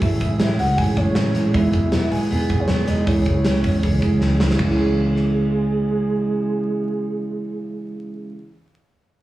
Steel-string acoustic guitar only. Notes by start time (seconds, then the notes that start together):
0.01 A3 C#4 E4 G#4
0.30 C#4 E4 G#4
0.77 A3 C#4 E4 G#4
0.97 A3 C#4 E4 G#4
1.16 A3 C#4 E4 G#4
1.34 A3 C#4 E4 G#4
1.53 E3 G#3 B3 D#4 G#4
1.81 B3 D#4 G#4
2.29 G#3 B3 D#4 G#4
2.48 G#3 B3 D#4 G#4
2.67 G#3 B3 D#4 G#4
2.87 G#3 B3 D#4 G#4
3.06 C#3 E3 C#4 E4 G#4
3.34 C#4 E4 G#4
3.82 E3 C#4 E4 G#4
4.01 E3 C#4 E4 G#4
4.21 E3 C#4 E4 G#4
4.40 E3 C#4 E4 G#4
4.54 C#3
4.60 E3
4.65 C#4
4.69 E4
4.73 G#4